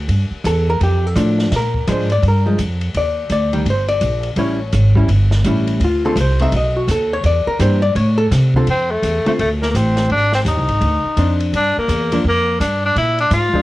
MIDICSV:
0, 0, Header, 1, 6, 480
1, 0, Start_track
1, 0, Key_signature, -1, "minor"
1, 0, Tempo, 357356
1, 118, Time_signature, 4, 2, 24, 8
1, 18294, End_track
2, 0, Start_track
2, 0, Title_t, "Hollow-body jazz guitar"
2, 0, Program_c, 0, 26
2, 624, Note_on_c, 0, 69, 75
2, 908, Note_off_c, 0, 69, 0
2, 936, Note_on_c, 0, 70, 96
2, 1091, Note_off_c, 0, 70, 0
2, 1119, Note_on_c, 0, 67, 73
2, 1432, Note_off_c, 0, 67, 0
2, 1432, Note_on_c, 0, 69, 103
2, 1563, Note_on_c, 0, 53, 61
2, 1577, Note_on_c, 0, 62, 69
2, 2043, Note_off_c, 0, 53, 0
2, 2049, Note_off_c, 0, 62, 0
2, 2065, Note_off_c, 0, 69, 0
2, 2100, Note_on_c, 0, 70, 75
2, 2531, Note_on_c, 0, 53, 66
2, 2533, Note_on_c, 0, 56, 74
2, 2547, Note_on_c, 0, 62, 62
2, 2574, Note_off_c, 0, 70, 0
2, 2579, Note_on_c, 0, 72, 72
2, 2801, Note_off_c, 0, 53, 0
2, 2802, Note_off_c, 0, 56, 0
2, 2809, Note_off_c, 0, 62, 0
2, 2842, Note_off_c, 0, 72, 0
2, 2847, Note_on_c, 0, 74, 100
2, 3008, Note_off_c, 0, 74, 0
2, 3064, Note_on_c, 0, 70, 75
2, 3305, Note_on_c, 0, 53, 57
2, 3316, Note_on_c, 0, 56, 65
2, 3330, Note_off_c, 0, 70, 0
2, 3464, Note_off_c, 0, 53, 0
2, 3470, Note_off_c, 0, 56, 0
2, 3995, Note_on_c, 0, 74, 80
2, 4448, Note_off_c, 0, 74, 0
2, 4464, Note_on_c, 0, 74, 78
2, 4740, Note_on_c, 0, 51, 58
2, 4751, Note_off_c, 0, 74, 0
2, 4751, Note_on_c, 0, 55, 65
2, 4903, Note_off_c, 0, 51, 0
2, 4909, Note_off_c, 0, 55, 0
2, 4972, Note_on_c, 0, 72, 76
2, 5215, Note_off_c, 0, 72, 0
2, 5220, Note_on_c, 0, 74, 106
2, 5835, Note_off_c, 0, 74, 0
2, 5874, Note_on_c, 0, 55, 61
2, 5890, Note_on_c, 0, 64, 70
2, 5891, Note_on_c, 0, 61, 72
2, 5896, Note_on_c, 0, 73, 76
2, 6155, Note_off_c, 0, 55, 0
2, 6163, Note_off_c, 0, 61, 0
2, 6163, Note_off_c, 0, 64, 0
2, 6623, Note_off_c, 0, 73, 0
2, 6657, Note_on_c, 0, 55, 65
2, 6674, Note_on_c, 0, 61, 62
2, 6681, Note_on_c, 0, 64, 78
2, 6822, Note_off_c, 0, 55, 0
2, 6831, Note_off_c, 0, 61, 0
2, 6834, Note_off_c, 0, 64, 0
2, 7334, Note_on_c, 0, 55, 57
2, 7347, Note_on_c, 0, 61, 59
2, 7353, Note_on_c, 0, 64, 62
2, 7811, Note_off_c, 0, 55, 0
2, 7818, Note_off_c, 0, 61, 0
2, 7821, Note_off_c, 0, 64, 0
2, 7851, Note_on_c, 0, 65, 70
2, 8123, Note_off_c, 0, 65, 0
2, 8125, Note_on_c, 0, 50, 73
2, 8132, Note_on_c, 0, 57, 69
2, 8133, Note_on_c, 0, 69, 89
2, 8134, Note_on_c, 0, 60, 68
2, 8139, Note_on_c, 0, 65, 70
2, 8277, Note_off_c, 0, 50, 0
2, 8280, Note_off_c, 0, 57, 0
2, 8281, Note_off_c, 0, 60, 0
2, 8284, Note_off_c, 0, 65, 0
2, 8293, Note_off_c, 0, 69, 0
2, 8334, Note_on_c, 0, 72, 82
2, 8599, Note_on_c, 0, 57, 66
2, 8607, Note_off_c, 0, 72, 0
2, 8609, Note_on_c, 0, 60, 70
2, 8618, Note_on_c, 0, 63, 69
2, 8626, Note_on_c, 0, 76, 104
2, 8754, Note_off_c, 0, 57, 0
2, 8759, Note_off_c, 0, 60, 0
2, 8763, Note_off_c, 0, 63, 0
2, 8780, Note_off_c, 0, 76, 0
2, 8816, Note_on_c, 0, 75, 82
2, 9085, Note_on_c, 0, 66, 54
2, 9089, Note_off_c, 0, 75, 0
2, 9249, Note_off_c, 0, 66, 0
2, 9284, Note_on_c, 0, 69, 87
2, 9562, Note_off_c, 0, 69, 0
2, 9579, Note_on_c, 0, 73, 101
2, 9737, Note_off_c, 0, 73, 0
2, 9748, Note_on_c, 0, 74, 92
2, 10034, Note_off_c, 0, 74, 0
2, 10037, Note_on_c, 0, 70, 97
2, 10194, Note_on_c, 0, 52, 52
2, 10202, Note_on_c, 0, 58, 54
2, 10202, Note_on_c, 0, 62, 60
2, 10205, Note_off_c, 0, 70, 0
2, 10211, Note_on_c, 0, 67, 56
2, 10232, Note_on_c, 0, 72, 85
2, 10475, Note_off_c, 0, 52, 0
2, 10479, Note_off_c, 0, 62, 0
2, 10480, Note_off_c, 0, 58, 0
2, 10484, Note_off_c, 0, 67, 0
2, 10500, Note_off_c, 0, 72, 0
2, 10505, Note_on_c, 0, 74, 121
2, 10679, Note_off_c, 0, 74, 0
2, 10691, Note_on_c, 0, 73, 76
2, 10983, Note_on_c, 0, 69, 112
2, 10985, Note_off_c, 0, 73, 0
2, 11091, Note_off_c, 0, 69, 0
2, 11497, Note_on_c, 0, 50, 61
2, 11502, Note_on_c, 0, 60, 69
2, 11508, Note_on_c, 0, 65, 73
2, 11514, Note_on_c, 0, 69, 65
2, 11643, Note_off_c, 0, 50, 0
2, 11645, Note_off_c, 0, 60, 0
2, 11648, Note_off_c, 0, 65, 0
2, 11651, Note_off_c, 0, 69, 0
2, 12440, Note_on_c, 0, 50, 67
2, 12444, Note_on_c, 0, 57, 73
2, 12456, Note_on_c, 0, 60, 65
2, 12462, Note_on_c, 0, 65, 71
2, 12594, Note_off_c, 0, 50, 0
2, 12596, Note_off_c, 0, 57, 0
2, 12602, Note_off_c, 0, 60, 0
2, 12605, Note_off_c, 0, 65, 0
2, 15024, Note_on_c, 0, 60, 45
2, 15030, Note_on_c, 0, 62, 53
2, 15495, Note_off_c, 0, 60, 0
2, 15498, Note_off_c, 0, 62, 0
2, 16285, Note_on_c, 0, 53, 57
2, 16296, Note_on_c, 0, 58, 53
2, 16302, Note_on_c, 0, 62, 69
2, 16436, Note_off_c, 0, 53, 0
2, 16441, Note_off_c, 0, 58, 0
2, 16444, Note_off_c, 0, 62, 0
2, 18179, Note_on_c, 0, 53, 55
2, 18199, Note_on_c, 0, 56, 62
2, 18205, Note_on_c, 0, 62, 67
2, 18294, Note_off_c, 0, 53, 0
2, 18294, Note_off_c, 0, 56, 0
2, 18294, Note_off_c, 0, 62, 0
2, 18294, End_track
3, 0, Start_track
3, 0, Title_t, "Tenor saxophone"
3, 0, Program_c, 1, 66
3, 11688, Note_on_c, 1, 60, 88
3, 11968, Note_on_c, 1, 57, 80
3, 11988, Note_off_c, 1, 60, 0
3, 12440, Note_off_c, 1, 57, 0
3, 12451, Note_on_c, 1, 57, 69
3, 12526, Note_off_c, 1, 57, 0
3, 12622, Note_on_c, 1, 57, 83
3, 12756, Note_off_c, 1, 57, 0
3, 12926, Note_on_c, 1, 58, 79
3, 13019, Note_off_c, 1, 58, 0
3, 13042, Note_on_c, 1, 58, 59
3, 13114, Note_on_c, 1, 60, 72
3, 13134, Note_off_c, 1, 58, 0
3, 13578, Note_off_c, 1, 60, 0
3, 13586, Note_on_c, 1, 62, 104
3, 13861, Note_off_c, 1, 62, 0
3, 13895, Note_on_c, 1, 60, 76
3, 13969, Note_off_c, 1, 60, 0
3, 14077, Note_on_c, 1, 63, 86
3, 15273, Note_off_c, 1, 63, 0
3, 15523, Note_on_c, 1, 62, 95
3, 15790, Note_off_c, 1, 62, 0
3, 15832, Note_on_c, 1, 58, 85
3, 16422, Note_off_c, 1, 58, 0
3, 16502, Note_on_c, 1, 58, 103
3, 16922, Note_off_c, 1, 58, 0
3, 16933, Note_on_c, 1, 62, 77
3, 17212, Note_off_c, 1, 62, 0
3, 17266, Note_on_c, 1, 62, 96
3, 17412, Note_off_c, 1, 62, 0
3, 17429, Note_on_c, 1, 64, 98
3, 17701, Note_off_c, 1, 64, 0
3, 17726, Note_on_c, 1, 62, 91
3, 17881, Note_off_c, 1, 62, 0
3, 17907, Note_on_c, 1, 65, 89
3, 18294, Note_off_c, 1, 65, 0
3, 18294, End_track
4, 0, Start_track
4, 0, Title_t, "Upright bass"
4, 0, Program_c, 2, 32
4, 110, Note_on_c, 2, 43, 78
4, 398, Note_off_c, 2, 43, 0
4, 592, Note_on_c, 2, 40, 98
4, 1062, Note_off_c, 2, 40, 0
4, 1081, Note_on_c, 2, 41, 90
4, 1543, Note_off_c, 2, 41, 0
4, 1551, Note_on_c, 2, 45, 99
4, 2022, Note_off_c, 2, 45, 0
4, 2037, Note_on_c, 2, 46, 77
4, 2505, Note_off_c, 2, 46, 0
4, 2520, Note_on_c, 2, 44, 93
4, 2982, Note_off_c, 2, 44, 0
4, 2990, Note_on_c, 2, 43, 88
4, 3462, Note_off_c, 2, 43, 0
4, 3469, Note_on_c, 2, 41, 88
4, 3942, Note_off_c, 2, 41, 0
4, 3956, Note_on_c, 2, 39, 65
4, 4421, Note_off_c, 2, 39, 0
4, 4429, Note_on_c, 2, 38, 83
4, 4903, Note_off_c, 2, 38, 0
4, 4909, Note_on_c, 2, 31, 79
4, 5380, Note_off_c, 2, 31, 0
4, 5388, Note_on_c, 2, 34, 92
4, 5847, Note_off_c, 2, 34, 0
4, 5855, Note_on_c, 2, 33, 70
4, 6337, Note_off_c, 2, 33, 0
4, 6352, Note_on_c, 2, 32, 98
4, 6818, Note_off_c, 2, 32, 0
4, 6826, Note_on_c, 2, 31, 91
4, 7302, Note_off_c, 2, 31, 0
4, 7310, Note_on_c, 2, 33, 93
4, 7779, Note_off_c, 2, 33, 0
4, 7787, Note_on_c, 2, 38, 82
4, 8260, Note_off_c, 2, 38, 0
4, 8268, Note_on_c, 2, 36, 97
4, 8743, Note_off_c, 2, 36, 0
4, 8755, Note_on_c, 2, 35, 86
4, 9227, Note_off_c, 2, 35, 0
4, 9235, Note_on_c, 2, 39, 94
4, 9707, Note_off_c, 2, 39, 0
4, 9717, Note_on_c, 2, 40, 84
4, 10005, Note_off_c, 2, 40, 0
4, 10200, Note_on_c, 2, 43, 98
4, 10670, Note_off_c, 2, 43, 0
4, 10681, Note_on_c, 2, 45, 91
4, 11150, Note_off_c, 2, 45, 0
4, 11165, Note_on_c, 2, 48, 99
4, 11632, Note_off_c, 2, 48, 0
4, 11643, Note_on_c, 2, 41, 68
4, 12111, Note_off_c, 2, 41, 0
4, 12120, Note_on_c, 2, 40, 87
4, 12407, Note_off_c, 2, 40, 0
4, 12612, Note_on_c, 2, 38, 81
4, 13076, Note_off_c, 2, 38, 0
4, 13087, Note_on_c, 2, 33, 94
4, 13547, Note_off_c, 2, 33, 0
4, 13555, Note_on_c, 2, 32, 66
4, 14027, Note_off_c, 2, 32, 0
4, 14034, Note_on_c, 2, 39, 98
4, 14193, Note_off_c, 2, 39, 0
4, 14193, Note_on_c, 2, 36, 56
4, 14345, Note_off_c, 2, 36, 0
4, 14354, Note_on_c, 2, 32, 70
4, 14509, Note_off_c, 2, 32, 0
4, 14517, Note_on_c, 2, 38, 81
4, 14806, Note_off_c, 2, 38, 0
4, 14999, Note_on_c, 2, 41, 84
4, 15469, Note_off_c, 2, 41, 0
4, 15489, Note_on_c, 2, 43, 76
4, 15771, Note_off_c, 2, 43, 0
4, 15961, Note_on_c, 2, 40, 93
4, 16429, Note_off_c, 2, 40, 0
4, 16444, Note_on_c, 2, 41, 86
4, 16910, Note_off_c, 2, 41, 0
4, 16927, Note_on_c, 2, 43, 89
4, 17391, Note_off_c, 2, 43, 0
4, 17403, Note_on_c, 2, 46, 71
4, 17865, Note_off_c, 2, 46, 0
4, 17873, Note_on_c, 2, 44, 97
4, 18161, Note_off_c, 2, 44, 0
4, 18294, End_track
5, 0, Start_track
5, 0, Title_t, "Muted upright bass strokes"
5, 412, Note_on_c, 9, 29, 45
5, 546, Note_off_c, 9, 29, 0
5, 10026, Note_on_c, 9, 29, 47
5, 10160, Note_off_c, 9, 29, 0
5, 12426, Note_on_c, 9, 29, 40
5, 12561, Note_off_c, 9, 29, 0
5, 14833, Note_on_c, 9, 29, 35
5, 14968, Note_off_c, 9, 29, 0
5, 15812, Note_on_c, 9, 29, 43
5, 15946, Note_off_c, 9, 29, 0
5, 18182, Note_on_c, 9, 29, 41
5, 18294, Note_off_c, 9, 29, 0
5, 18294, End_track
6, 0, Start_track
6, 0, Title_t, "Drums"
6, 114, Note_on_c, 9, 36, 20
6, 118, Note_on_c, 9, 51, 56
6, 248, Note_off_c, 9, 36, 0
6, 252, Note_off_c, 9, 51, 0
6, 596, Note_on_c, 9, 36, 22
6, 604, Note_on_c, 9, 44, 51
6, 604, Note_on_c, 9, 51, 69
6, 731, Note_off_c, 9, 36, 0
6, 738, Note_off_c, 9, 44, 0
6, 738, Note_off_c, 9, 51, 0
6, 1078, Note_on_c, 9, 36, 22
6, 1086, Note_on_c, 9, 51, 57
6, 1212, Note_off_c, 9, 36, 0
6, 1220, Note_off_c, 9, 51, 0
6, 1556, Note_on_c, 9, 36, 25
6, 1561, Note_on_c, 9, 44, 55
6, 1561, Note_on_c, 9, 51, 65
6, 1691, Note_off_c, 9, 36, 0
6, 1696, Note_off_c, 9, 44, 0
6, 1696, Note_off_c, 9, 51, 0
6, 1866, Note_on_c, 9, 38, 33
6, 2000, Note_off_c, 9, 38, 0
6, 2036, Note_on_c, 9, 38, 40
6, 2037, Note_on_c, 9, 36, 23
6, 2038, Note_on_c, 9, 51, 64
6, 2170, Note_off_c, 9, 38, 0
6, 2171, Note_off_c, 9, 36, 0
6, 2173, Note_off_c, 9, 51, 0
6, 2341, Note_on_c, 9, 36, 49
6, 2475, Note_off_c, 9, 36, 0
6, 2515, Note_on_c, 9, 36, 21
6, 2519, Note_on_c, 9, 44, 44
6, 2519, Note_on_c, 9, 51, 68
6, 2650, Note_off_c, 9, 36, 0
6, 2653, Note_off_c, 9, 44, 0
6, 2653, Note_off_c, 9, 51, 0
6, 2816, Note_on_c, 9, 51, 44
6, 2950, Note_off_c, 9, 51, 0
6, 2993, Note_on_c, 9, 36, 22
6, 2997, Note_on_c, 9, 51, 51
6, 3128, Note_off_c, 9, 36, 0
6, 3131, Note_off_c, 9, 51, 0
6, 3472, Note_on_c, 9, 36, 17
6, 3472, Note_on_c, 9, 44, 55
6, 3472, Note_on_c, 9, 51, 58
6, 3606, Note_off_c, 9, 44, 0
6, 3606, Note_off_c, 9, 51, 0
6, 3607, Note_off_c, 9, 36, 0
6, 3775, Note_on_c, 9, 51, 47
6, 3909, Note_off_c, 9, 51, 0
6, 3952, Note_on_c, 9, 36, 22
6, 3954, Note_on_c, 9, 51, 64
6, 4086, Note_off_c, 9, 36, 0
6, 4088, Note_off_c, 9, 51, 0
6, 4425, Note_on_c, 9, 44, 49
6, 4425, Note_on_c, 9, 51, 62
6, 4429, Note_on_c, 9, 36, 26
6, 4559, Note_off_c, 9, 44, 0
6, 4559, Note_off_c, 9, 51, 0
6, 4563, Note_off_c, 9, 36, 0
6, 4740, Note_on_c, 9, 51, 46
6, 4874, Note_off_c, 9, 51, 0
6, 4909, Note_on_c, 9, 36, 16
6, 4916, Note_on_c, 9, 51, 57
6, 5043, Note_off_c, 9, 36, 0
6, 5050, Note_off_c, 9, 51, 0
6, 5216, Note_on_c, 9, 51, 51
6, 5350, Note_off_c, 9, 51, 0
6, 5385, Note_on_c, 9, 36, 17
6, 5385, Note_on_c, 9, 44, 51
6, 5385, Note_on_c, 9, 51, 57
6, 5519, Note_off_c, 9, 36, 0
6, 5519, Note_off_c, 9, 44, 0
6, 5519, Note_off_c, 9, 51, 0
6, 5684, Note_on_c, 9, 51, 41
6, 5818, Note_off_c, 9, 51, 0
6, 5859, Note_on_c, 9, 51, 64
6, 5863, Note_on_c, 9, 36, 24
6, 5994, Note_off_c, 9, 51, 0
6, 5998, Note_off_c, 9, 36, 0
6, 6347, Note_on_c, 9, 44, 61
6, 6347, Note_on_c, 9, 51, 63
6, 6348, Note_on_c, 9, 36, 21
6, 6481, Note_off_c, 9, 44, 0
6, 6481, Note_off_c, 9, 51, 0
6, 6482, Note_off_c, 9, 36, 0
6, 6653, Note_on_c, 9, 36, 49
6, 6787, Note_off_c, 9, 36, 0
6, 6829, Note_on_c, 9, 36, 22
6, 6831, Note_on_c, 9, 51, 61
6, 6964, Note_off_c, 9, 36, 0
6, 6966, Note_off_c, 9, 51, 0
6, 7134, Note_on_c, 9, 38, 52
6, 7268, Note_off_c, 9, 38, 0
6, 7312, Note_on_c, 9, 44, 58
6, 7312, Note_on_c, 9, 51, 66
6, 7313, Note_on_c, 9, 36, 20
6, 7446, Note_off_c, 9, 44, 0
6, 7446, Note_off_c, 9, 51, 0
6, 7447, Note_off_c, 9, 36, 0
6, 7621, Note_on_c, 9, 51, 44
6, 7755, Note_off_c, 9, 51, 0
6, 7794, Note_on_c, 9, 36, 25
6, 7798, Note_on_c, 9, 51, 57
6, 7929, Note_off_c, 9, 36, 0
6, 7933, Note_off_c, 9, 51, 0
6, 8275, Note_on_c, 9, 36, 28
6, 8281, Note_on_c, 9, 44, 55
6, 8281, Note_on_c, 9, 51, 75
6, 8410, Note_off_c, 9, 36, 0
6, 8416, Note_off_c, 9, 44, 0
6, 8416, Note_off_c, 9, 51, 0
6, 8588, Note_on_c, 9, 51, 48
6, 8722, Note_off_c, 9, 51, 0
6, 8758, Note_on_c, 9, 36, 18
6, 8758, Note_on_c, 9, 51, 65
6, 8892, Note_off_c, 9, 36, 0
6, 8892, Note_off_c, 9, 51, 0
6, 9239, Note_on_c, 9, 36, 22
6, 9245, Note_on_c, 9, 44, 67
6, 9245, Note_on_c, 9, 51, 64
6, 9373, Note_off_c, 9, 36, 0
6, 9379, Note_off_c, 9, 44, 0
6, 9379, Note_off_c, 9, 51, 0
6, 9718, Note_on_c, 9, 36, 21
6, 9719, Note_on_c, 9, 51, 64
6, 9852, Note_off_c, 9, 36, 0
6, 9853, Note_off_c, 9, 51, 0
6, 10201, Note_on_c, 9, 36, 26
6, 10202, Note_on_c, 9, 44, 58
6, 10202, Note_on_c, 9, 51, 63
6, 10335, Note_off_c, 9, 36, 0
6, 10336, Note_off_c, 9, 44, 0
6, 10336, Note_off_c, 9, 51, 0
6, 10683, Note_on_c, 9, 36, 20
6, 10689, Note_on_c, 9, 51, 63
6, 10817, Note_off_c, 9, 36, 0
6, 10824, Note_off_c, 9, 51, 0
6, 11165, Note_on_c, 9, 36, 25
6, 11168, Note_on_c, 9, 38, 37
6, 11171, Note_on_c, 9, 44, 48
6, 11171, Note_on_c, 9, 51, 69
6, 11299, Note_off_c, 9, 36, 0
6, 11302, Note_off_c, 9, 38, 0
6, 11305, Note_off_c, 9, 44, 0
6, 11305, Note_off_c, 9, 51, 0
6, 11472, Note_on_c, 9, 36, 52
6, 11606, Note_off_c, 9, 36, 0
6, 11646, Note_on_c, 9, 51, 64
6, 11780, Note_off_c, 9, 51, 0
6, 12126, Note_on_c, 9, 36, 24
6, 12129, Note_on_c, 9, 44, 55
6, 12129, Note_on_c, 9, 51, 69
6, 12260, Note_off_c, 9, 36, 0
6, 12264, Note_off_c, 9, 44, 0
6, 12264, Note_off_c, 9, 51, 0
6, 12439, Note_on_c, 9, 51, 46
6, 12573, Note_off_c, 9, 51, 0
6, 12607, Note_on_c, 9, 36, 20
6, 12613, Note_on_c, 9, 51, 60
6, 12741, Note_off_c, 9, 36, 0
6, 12748, Note_off_c, 9, 51, 0
6, 12924, Note_on_c, 9, 38, 39
6, 13059, Note_off_c, 9, 38, 0
6, 13086, Note_on_c, 9, 36, 20
6, 13095, Note_on_c, 9, 44, 59
6, 13095, Note_on_c, 9, 51, 64
6, 13220, Note_off_c, 9, 36, 0
6, 13229, Note_off_c, 9, 44, 0
6, 13229, Note_off_c, 9, 51, 0
6, 13385, Note_on_c, 9, 38, 41
6, 13388, Note_on_c, 9, 51, 44
6, 13519, Note_off_c, 9, 38, 0
6, 13522, Note_off_c, 9, 51, 0
6, 13560, Note_on_c, 9, 36, 23
6, 13560, Note_on_c, 9, 51, 61
6, 13694, Note_off_c, 9, 36, 0
6, 13695, Note_off_c, 9, 51, 0
6, 13867, Note_on_c, 9, 38, 49
6, 14001, Note_off_c, 9, 38, 0
6, 14042, Note_on_c, 9, 36, 21
6, 14048, Note_on_c, 9, 44, 55
6, 14048, Note_on_c, 9, 51, 65
6, 14176, Note_off_c, 9, 36, 0
6, 14182, Note_off_c, 9, 44, 0
6, 14182, Note_off_c, 9, 51, 0
6, 14352, Note_on_c, 9, 51, 42
6, 14486, Note_off_c, 9, 51, 0
6, 14520, Note_on_c, 9, 36, 20
6, 14525, Note_on_c, 9, 51, 53
6, 14654, Note_off_c, 9, 36, 0
6, 14660, Note_off_c, 9, 51, 0
6, 15001, Note_on_c, 9, 44, 58
6, 15001, Note_on_c, 9, 51, 65
6, 15002, Note_on_c, 9, 36, 25
6, 15135, Note_off_c, 9, 44, 0
6, 15135, Note_off_c, 9, 51, 0
6, 15136, Note_off_c, 9, 36, 0
6, 15316, Note_on_c, 9, 51, 46
6, 15450, Note_off_c, 9, 51, 0
6, 15485, Note_on_c, 9, 36, 25
6, 15494, Note_on_c, 9, 51, 68
6, 15620, Note_off_c, 9, 36, 0
6, 15628, Note_off_c, 9, 51, 0
6, 15965, Note_on_c, 9, 36, 19
6, 15971, Note_on_c, 9, 44, 64
6, 15971, Note_on_c, 9, 51, 67
6, 16099, Note_off_c, 9, 36, 0
6, 16106, Note_off_c, 9, 44, 0
6, 16106, Note_off_c, 9, 51, 0
6, 16277, Note_on_c, 9, 51, 64
6, 16411, Note_off_c, 9, 51, 0
6, 16448, Note_on_c, 9, 36, 27
6, 16582, Note_off_c, 9, 36, 0
6, 16927, Note_on_c, 9, 36, 25
6, 16935, Note_on_c, 9, 44, 54
6, 16935, Note_on_c, 9, 51, 63
6, 17062, Note_off_c, 9, 36, 0
6, 17069, Note_off_c, 9, 44, 0
6, 17069, Note_off_c, 9, 51, 0
6, 17405, Note_on_c, 9, 36, 27
6, 17411, Note_on_c, 9, 51, 59
6, 17539, Note_off_c, 9, 36, 0
6, 17546, Note_off_c, 9, 51, 0
6, 17709, Note_on_c, 9, 51, 45
6, 17843, Note_off_c, 9, 51, 0
6, 17877, Note_on_c, 9, 44, 52
6, 17877, Note_on_c, 9, 51, 63
6, 17880, Note_on_c, 9, 36, 20
6, 18012, Note_off_c, 9, 44, 0
6, 18012, Note_off_c, 9, 51, 0
6, 18014, Note_off_c, 9, 36, 0
6, 18183, Note_on_c, 9, 36, 52
6, 18294, Note_off_c, 9, 36, 0
6, 18294, End_track
0, 0, End_of_file